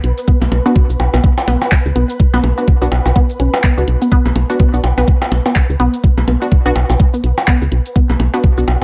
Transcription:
Already playing: synth texture B4
0.04 fm bass B1, closed hi-hat
0.18 closed hi-hat, shaker
0.28 synth arpeggio sound B3, kick
0.42 fm bass B1, percussion blips, shaker
0.52 fm bass B1, closed hi-hat, percussion blips
0.66 synth stab B3 D4 F#4, synth arpeggio sound B3, shaker
0.76 kick
0.90 fm bass B1, shaker
1.00 fm bass B1, closed hi-hat, percussion blips
1.14 fm bass B1, synth arpeggio sound B3, percussion blips, shaker
1.24 kick
1.38 percussion blips, shaker
1.48 fm bass B1, synth arpeggio sound B3, closed hi-hat, percussion blips
1.62 percussion blips, shaker
1.72 kick, clap
1.86 fm bass C#2, shaker
1.96 fm bass B1, synth arpeggio sound B3, closed hi-hat
2.10 closed hi-hat, shaker
2.20 kick
2.34 fm bass B1, synth arpeggio sound B3, percussion blips, shaker
2.44 fm bass B1, closed hi-hat, percussion blips
2.58 synth stab B3 D4 F#4, shaker
2.68 kick
2.82 fm bass B1, synth stab B3 D4 F#4, synth arpeggio sound B3, shaker
2.92 fm bass B1, closed hi-hat, percussion blips
3.06 fm bass B1, percussion blips, shaker
3.16 synth arpeggio sound B3, kick
3.30 shaker
3.40 fm bass B1, synth arpeggio sound C#4, closed hi-hat
3.54 percussion blips, shaker
3.64 synth arpeggio sound B3, kick, clap
3.78 fm bass C#2, synth stab B3 D4 F#4, shaker
3.88 fm bass B1, closed hi-hat
4.02 synth arpeggio sound B3, closed hi-hat, shaker
4.12 synth arpeggio sound B3, kick
4.26 fm bass B1, percussion blips, shaker
4.36 fm bass B1, closed hi-hat, percussion blips
4.50 synth stab B3 D4 F#4, shaker
4.60 synth arpeggio sound B3, kick
4.74 fm bass B1, synth stab B3 D4 F#4, shaker
4.84 fm bass B1, closed hi-hat, percussion blips
4.98 fm bass B1, synth arpeggio sound B3, percussion blips, shaker
5.08 kick
5.22 percussion blips, shaker
5.32 fm bass B1, closed hi-hat, percussion blips
5.46 synth arpeggio sound B3, percussion blips, shaker
5.56 kick, clap
5.70 fm bass C#2, shaker
5.80 fm bass B1, synth arpeggio sound B3, closed hi-hat
5.94 closed hi-hat, shaker
6.04 kick
6.18 fm bass B1, percussion blips, shaker
6.28 fm bass B1, synth arpeggio sound B3, closed hi-hat, percussion blips
6.42 synth stab B3 D4 F#4, shaker
6.52 kick
6.66 fm bass B1, synth arpeggio sound B3, synth stab B3 D4 F#4, shaker
6.76 fm bass B1, closed hi-hat, percussion blips
6.90 fm bass B1, percussion blips, shaker
7.00 kick
7.14 synth arpeggio sound B3, shaker
7.24 fm bass B1, closed hi-hat
7.38 percussion blips, shaker
7.48 synth arpeggio sound B3, kick, clap
7.62 fm bass C#2, shaker
7.72 fm bass B1, closed hi-hat
7.86 closed hi-hat, shaker
7.96 synth arpeggio sound B3, kick
8.10 fm bass B1, percussion blips, shaker
8.20 fm bass B1, closed hi-hat, percussion blips
8.34 synth arpeggio sound B3, synth stab B3 D4 F#4, shaker
8.44 kick
8.58 fm bass B1, synth stab B3 D4 F#4, shaker
8.68 fm bass B1, closed hi-hat, percussion blips

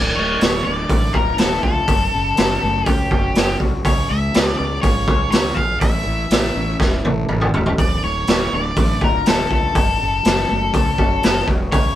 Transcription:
Already playing: fingered electric bass D1, steel-string acoustic guitar D2
0.16 fingered electric bass D1, steel-string acoustic guitar A2, lead electric guitar C#5
0.41 fingered electric bass D1, steel-string acoustic guitar A2, snare, open hi-hat
0.65 fingered electric bass D1, steel-string acoustic guitar D3, lead electric guitar D5
0.89 fingered electric bass A1, steel-string acoustic guitar A3, kick, open hi-hat
1.13 fingered electric bass D1, steel-string acoustic guitar F4, lead electric guitar A#4, kick
1.38 fingered electric bass D1, steel-string acoustic guitar A3, lead electric guitar A4, snare, open hi-hat
1.63 fingered electric bass C#2, steel-string acoustic guitar F4, lead electric guitar A4, kick
1.88 fingered electric bass F#1, steel-string acoustic guitar F#2, kick, open hi-hat
2.14 fingered electric bass F#1, steel-string acoustic guitar C#3
2.37 fingered electric bass F#1, steel-string acoustic guitar F#3, snare, open hi-hat
2.63 fingered electric bass F#1, steel-string acoustic guitar A3
2.86 fingered electric bass C#2, steel-string acoustic guitar C#4, lead electric guitar G4, kick, open hi-hat
3.11 fingered electric bass F#1, steel-string acoustic guitar F#4, kick
3.35 fingered electric bass F#1, steel-string acoustic guitar C#4, snare, open hi-hat
3.60 fingered electric bass C2, steel-string acoustic guitar F#4, kick
3.85 fingered electric bass C#2, steel-string acoustic guitar C#3, lead electric guitar C#5, kick, open hi-hat
4.09 fingered electric bass C#2, steel-string acoustic guitar G#3, lead electric guitar E5
4.34 fingered electric bass C#2, steel-string acoustic guitar G#3, snare, open hi-hat
4.57 fingered electric bass C#2, steel-string acoustic guitar C#4, lead electric guitar D5
4.82 fingered electric bass G#1, steel-string acoustic guitar F4, lead electric guitar C#5, kick, open hi-hat
5.08 fingered electric bass C#2, steel-string acoustic guitar G#4, kick
5.31 fingered electric bass C#2, steel-string acoustic guitar F4, lead electric guitar C#5, snare, open hi-hat
5.54 fingered electric bass A#1, steel-string acoustic guitar G#4, lead electric guitar F5, kick
5.80 fingered electric bass A1, steel-string acoustic guitar A2, lead electric guitar E5, kick, open hi-hat
6.06 fingered electric bass A1, steel-string acoustic guitar E3
6.30 fingered electric bass A1, steel-string acoustic guitar A3, snare, open hi-hat
6.56 fingered electric bass A1, steel-string acoustic guitar C#4
6.80 fingered electric bass E1, steel-string acoustic guitar E4, kick, snare
7.05 fingered electric bass A1, steel-string acoustic guitar A4, high tom
7.29 fingered electric bass A1, steel-string acoustic guitar E4, mid tom
7.41 mid tom
7.54 fingered electric bass E1, steel-string acoustic guitar A4, floor tom
7.66 floor tom
7.78 fingered electric bass D1, steel-string acoustic guitar D2, lead electric guitar D5, kick, open hi-hat
8.03 fingered electric bass D1, steel-string acoustic guitar A2, lead electric guitar C#5
8.27 fingered electric bass D1, steel-string acoustic guitar A2, snare, open hi-hat
8.53 fingered electric bass D1, steel-string acoustic guitar D3, lead electric guitar D5
8.76 fingered electric bass A1, steel-string acoustic guitar A3, kick, open hi-hat
9.01 fingered electric bass D1, steel-string acoustic guitar F4, lead electric guitar A#4, kick
9.26 fingered electric bass D1, steel-string acoustic guitar A3, lead electric guitar A4, snare, open hi-hat
9.51 fingered electric bass C#2, steel-string acoustic guitar F4, lead electric guitar A4, kick
9.75 fingered electric bass F#1, steel-string acoustic guitar F#2, kick, open hi-hat
10.01 fingered electric bass F#1, steel-string acoustic guitar C#3
10.25 fingered electric bass F#1, steel-string acoustic guitar F#3, snare, open hi-hat
10.49 fingered electric bass F#1, steel-string acoustic guitar A3
10.74 fingered electric bass C#2, steel-string acoustic guitar C#4, kick, open hi-hat
10.98 fingered electric bass F#1, steel-string acoustic guitar F#4, kick
11.23 fingered electric bass F#1, steel-string acoustic guitar C#4, snare, open hi-hat
11.47 fingered electric bass E1, steel-string acoustic guitar F#4, kick
11.72 fingered electric bass C#2, steel-string acoustic guitar C#3, lead electric guitar C#5, kick, open hi-hat

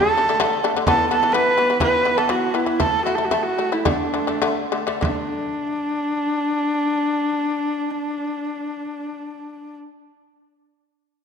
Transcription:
Already playing: shamisen D3 A3, horsehead fiddle A4
0.17 shamisen D3 A3
0.29 shamisen D3 A3, frame drum
0.40 shamisen D3 A3, frame drum
0.64 shamisen D3 A3
0.75 shamisen D3 A3, frame drum
0.87 shamisen E3 B3, horsehead fiddle A4, frame drum
1.11 shamisen E3 B3, horsehead fiddle A4
1.22 shamisen E3 B3, frame drum
1.32 shamisen E3 B3, horsehead fiddle B4, frame drum
1.58 shamisen E3 B3
1.70 shamisen E3 B3
1.80 shamisen E3 B3, horsehead fiddle B4, frame drum
2.05 shamisen E3 B3
2.18 shamisen E3 B3, horsehead fiddle A4, frame drum
2.29 shamisen E3 B3, horsehead fiddle F#4, frame drum
2.54 shamisen E3 B3, horsehead fiddle E4
2.66 shamisen E3 B3, frame drum
2.80 shamisen A3 E4, horsehead fiddle A4, frame drum
3.05 shamisen A3 E4, horsehead fiddle F#4
3.15 shamisen A3 E4, horsehead fiddle A4, frame drum
3.25 horsehead fiddle F#4
3.31 shamisen A3 E4, horsehead fiddle A4, frame drum
3.43 horsehead fiddle F#4
3.58 shamisen A3 E4
3.72 shamisen A3 E4, horsehead fiddle E4
3.85 shamisen D3 A3, horsehead fiddle D4, frame drum
4.14 shamisen D3 A3
4.27 shamisen D3 A3, frame drum
4.42 shamisen D3 A3, frame drum
4.72 shamisen D3 A3
4.87 shamisen D3 A3, frame drum
5.01 shamisen D3 A3, horsehead fiddle D4, frame drum

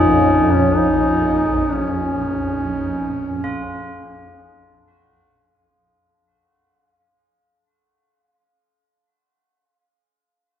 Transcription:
Already playing: synth drone A#1 F2, ambient pad C#4 F4 A#4 C#5, duduk D#4, tubular bells G#4
0.53 duduk C#4
0.77 duduk D#4
1.72 duduk C#4
3.44 tubular bells F4

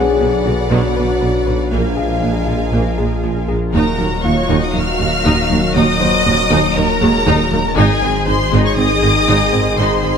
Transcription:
Already playing: detuned saw bass B1, trombone section D3 F#3, analog synth pad F#3 D4 F#4 B4, felt piano F#4 F#5, french horn section G#4, synth arpeggio sound B4, violin section D5 F#5
0.21 double bass section B1, tuba B1, cello section B2, viola section D3, synth arpeggio sound D4
0.46 double bass section B1, tuba B1, cello section B2, viola section D3, synth arpeggio sound F#4
0.71 tuba B1, double bass section B1, cello section B2, viola section F#3, synth arpeggio sound B3, french horn section F#4
0.96 tuba B1, double bass section B1, cello section B2, viola section D3, synth arpeggio sound B4
1.21 double bass section B1, tuba B1, cello section B2, viola section D3, synth arpeggio sound B4
1.47 double bass section B1, tuba B1, cello section B2, viola section D3, synth arpeggio sound B4
1.72 detuned saw bass A#1, double bass section A#1, tuba A#1, cello section A#2, trombone section F3 G#3, analog synth pad F3 F4 G#4 A#4, synth arpeggio sound A#3, viola section A#3, french horn section D4, violin section F5 G#5
1.97 double bass section A#1, tuba A#1, cello section A#2, viola section G#3, synth arpeggio sound G#4, felt piano F5
2.22 double bass section A#1, tuba A#1, cello section A#2, viola section F3, synth arpeggio sound D4
2.47 double bass section A#1, tuba A#1, cello section A#2, viola section G#3, synth arpeggio sound F4
2.72 double bass section A#1, tuba A#1, cello section A#2, viola section A#3, synth arpeggio sound A#3
2.98 double bass section A#1, tuba A#1, cello section A#2, viola section G#3, synth arpeggio sound G#4
3.23 double bass section A#1, tuba A#1, cello section A#2, viola section F3, synth arpeggio sound G#4
3.48 tuba A#1, double bass section A#1, cello section A#2, viola section G#3, synth arpeggio sound G#4
3.73 detuned saw bass D#1, cello section D#2, tuba D#2, double bass section D#2, synth arpeggio sound D#3, trombone section D#3 F#3, analog synth pad F#3 D#4 A#4, french horn section A#3 D#4, viola section D#4 F#4, violin section A#4 A#5
3.98 cello section D#2, tuba D#2, double bass section D#2, synth arpeggio sound F#3, viola section A#3
4.23 tuba D#2, double bass section D#2, cello section D#2, viola section F#3, synth arpeggio sound A#3, felt piano F4 F5, violin section C#5 C#6
4.49 double bass section D#2, tuba D#2, cello section D#2, synth arpeggio sound D#3, viola section D#4
4.62 violin section D#5 D#6
4.74 tuba D#2, cello section D#2, double bass section D#2, synth arpeggio sound F#3, viola section A#3, violin section F5 F6
4.99 cello section D#2, tuba D#2, double bass section D#2, viola section F#3, synth arpeggio sound A#3
5.24 tuba D#2, cello section D#2, double bass section D#2, synth arpeggio sound D#3, viola section D#4
5.50 tuba D#2, cello section D#2, double bass section D#2, synth arpeggio sound F#3, viola section A#3
5.74 tuba D#2, double bass section D#2, cello section D#2, synth arpeggio sound D#3, viola section D#4, violin section D#5 D#6
6.00 tuba D#2, double bass section D#2, cello section D#2, synth arpeggio sound F#3, viola section A#3, felt piano C5
6.25 tuba D#2, double bass section D#2, cello section D#2, viola section F#3, synth arpeggio sound A#3
6.50 tuba D#2, double bass section D#2, cello section D#2, synth arpeggio sound D#3, viola section D#4
6.76 tuba D#2, double bass section D#2, cello section D#2, synth arpeggio sound F#3, viola section A#3, violin section A#4 A#5
7.01 tuba D#2, double bass section D#2, cello section D#2, viola section F#3, felt piano G#3 G#4, synth arpeggio sound A#3
7.26 tuba D#2, double bass section D#2, cello section D#2, synth arpeggio sound D#3, viola section D#4
7.51 tuba D#2, cello section D#2, double bass section D#2, synth arpeggio sound F#3, viola section A#3
7.76 tuba G#1, double bass section G#1, detuned saw bass G#1, cello section G#2, trombone section D#3 G#3, analog synth pad D#3 D#4 G#4 C5, synth arpeggio sound G#3, french horn section C4 D#4, viola section D#4 G#4, violin section G#4 G#5
8.02 double bass section G#1, tuba G#1, cello section G#2, synth arpeggio sound C4, viola section C4
8.27 tuba G#1, double bass section G#1, cello section G#2, viola section G#3, synth arpeggio sound D#4, violin section C5 C6
8.52 tuba G#1, double bass section G#1, cello section G#2, synth arpeggio sound G#3, viola section D#4
8.64 violin section C#5 C#6
8.76 tuba G#1, double bass section G#1, cello section G#2, viola section C4, synth arpeggio sound C4, violin section D#5 D#6
9.03 tuba G#1, double bass section G#1, cello section G#2, viola section G#3, synth arpeggio sound D#4, felt piano A#4
9.28 tuba G#1, double bass section G#1, cello section G#2, synth arpeggio sound G#3, viola section D#4
9.53 tuba G#1, double bass section G#1, cello section G#2, synth arpeggio sound C4, viola section C4
9.78 tuba G#1, double bass section G#1, cello section G#2, synth arpeggio sound G#3, viola section D#4, violin section C5 C6
10.04 tuba G#1, double bass section G#1, cello section G#2, synth arpeggio sound C4, viola section C4

